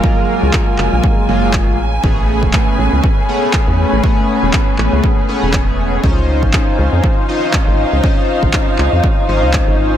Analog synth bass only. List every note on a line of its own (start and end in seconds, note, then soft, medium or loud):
0.43 0.51 C#2 medium
0.79 0.89 F#1 medium
0.93 1.01 A#1 loud
1.29 1.69 F#1 medium
1.68 1.99 A1 medium
2.04 2.44 A1 medium
2.43 2.51 E1 medium
2.79 2.89 A1 medium
2.93 3.01 C#2 medium
3.68 3.85 E2 medium
3.93 4.01 A1 medium
4.43 4.51 E1 medium
4.79 4.89 A1 medium
4.93 5.01 C#2 medium
5.43 5.99 E1 medium
6.04 6.44 C#2 medium
6.43 6.51 G#1 medium
6.79 6.89 C#2 medium
6.93 7.01 F2 medium
7.68 7.85 G#1 medium
7.93 8.01 C#2 medium
8.43 8.51 G#1 medium
8.79 8.89 C#2 medium
8.93 9.01 F2 medium
9.29 9.44 G#1 medium
9.43 9.60 C#2 loud
9.68 9.97 G#1 loud